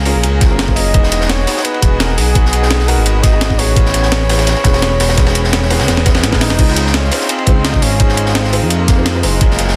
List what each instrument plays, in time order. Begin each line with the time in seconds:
Already playing: analog synth bass C#2, felt piano A#3 C#4 F4 G#4, analog synth pad F5 G#5 A#5
0.05 felt piano A#3 C#4 F4 G#4, open hi-hat, ride
0.15 analog synth bass A#1
0.23 analog synth bass C#2, closed hi-hat, ride
0.41 analog synth bass C#2, kick, snare, closed hi-hat, ride
0.50 analog synth bass F#1, felt piano A#3 C#4 F4 G#4
0.59 snare, closed hi-hat, ride
0.68 felt piano A#3 C#4 F4 G#4, kick
0.76 felt piano A#3 C#4 F4 G#4, flugelhorn D#5, open hi-hat, ride
0.93 analog synth bass E1, felt piano B3 D#4 F#4 G#4, analog synth pad D#5 F#5, kick, closed hi-hat, ride
1.03 snare
1.12 snare, closed hi-hat, ride
1.21 snare
1.29 flugelhorn C#5, snare, closed hi-hat, ride
1.47 felt piano B3 D#4 F#4 G#4, snare, open hi-hat, ride
1.57 snare
1.64 flugelhorn B4, closed hi-hat, ride
1.74 ride
1.81 analog synth bass E1, felt piano B3 D#4 F#4 G#4, kick, closed hi-hat, ride
2.00 flugelhorn A#4, snare, closed hi-hat, ride
2.17 analog synth bass B1, flugelhorn G#4, open hi-hat, ride
2.35 felt piano B3 D#4 F#4 G#4, kick, closed hi-hat, ride
2.45 snare
2.53 closed hi-hat, ride
2.63 snare
2.71 snare, closed hi-hat, ride
2.79 snare
2.88 felt piano B3 D#4 F#4 G#4, flugelhorn A#4, open hi-hat, ride
2.97 analog synth bass G#1
3.06 flugelhorn B4, closed hi-hat, ride
3.23 analog synth bass G#1, flugelhorn D#5, kick, snare, closed hi-hat, ride
3.32 felt piano B3 D#4 F#4 G#4
3.41 snare, closed hi-hat, ride
3.50 felt piano B3 D#4 F#4 G#4, kick
3.58 analog synth bass A1, felt piano B3 D#4 F#4 G#4, flugelhorn C#5, open hi-hat, ride
3.75 felt piano B3 C#4 E4 G#4, analog synth pad C#5 B5, kick, closed hi-hat, ride
3.86 snare
3.94 analog synth bass A1, snare, closed hi-hat, ride
4.03 snare
4.12 snare, closed hi-hat, ride
4.29 felt piano B3 C#4 E4 G#4, snare, open hi-hat, ride
4.38 snare, ride
4.47 snare, closed hi-hat, ride
4.56 ride
4.64 analog synth bass E1, felt piano B3 C#4 E4 G#4, kick, snare, closed hi-hat, ride
4.74 snare, ride
4.82 snare, closed hi-hat, ride
5.00 analog synth bass E1, snare, open hi-hat, ride
5.09 snare, ride
5.17 felt piano B3 C#4 E4 G#4, kick, snare, closed hi-hat, ride
5.27 snare, ride
5.35 closed hi-hat, ride
5.44 snare
5.53 snare, closed hi-hat, ride
5.62 snare
5.70 felt piano B3 C#4 E4 G#4, snare, open hi-hat, ride
5.79 analog synth bass C#2, snare, ride
5.88 analog synth bass E1, snare, closed hi-hat, ride
5.97 snare
6.05 felt piano B3 C#4 E4 G#4, kick, snare, closed hi-hat, ride
6.14 snare, ride
6.23 analog synth bass A1, snare, closed hi-hat, ride
6.32 felt piano B3 C#4 E4 G#4, kick, snare
6.41 flugelhorn D#4, snare, open hi-hat, ride
6.50 analog synth bass E1, snare
6.58 analog synth bass C#2, felt piano C4 D#4 F4 G#4, analog synth pad D#5 F5 C6, kick, closed hi-hat, crash, ride
6.68 snare
6.76 snare, closed hi-hat, ride
6.87 snare
6.94 flugelhorn C#4, snare, closed hi-hat, ride
7.11 felt piano C4 D#4 F4 G#4, snare, open hi-hat, ride
7.21 snare
7.29 flugelhorn C4, closed hi-hat, ride
7.38 ride
7.46 analog synth bass C#2, felt piano C4 D#4 F4 G#4, kick, closed hi-hat, ride
7.65 flugelhorn D#4, snare, closed hi-hat, ride
7.74 kick
7.82 analog synth bass G#1, flugelhorn C#4, open hi-hat, ride
7.99 felt piano D#4 F4 G#4 C5, kick, closed hi-hat, ride
8.09 snare
8.17 closed hi-hat, ride
8.26 snare
8.35 flugelhorn C4, snare, closed hi-hat, ride
8.44 snare
8.52 felt piano C4 D#4 F4 G#4, open hi-hat, ride
8.62 analog synth bass F2
8.70 flugelhorn A#3, closed hi-hat, ride
8.88 analog synth bass F2, kick, snare, closed hi-hat, ride
8.97 felt piano C4 D#4 F4 G#4
9.06 snare, closed hi-hat, ride
9.15 felt piano C4 D#4 F4 G#4
9.23 analog synth bass F#1, flugelhorn G#3, felt piano C4 D#4 F4 G#4, open hi-hat, ride
9.40 felt piano A#3 C#4 F4 G#4, analog synth pad F5 G#5 A#5, kick, closed hi-hat, ride
9.51 snare
9.59 analog synth bass F#1, snare, closed hi-hat, ride
9.68 snare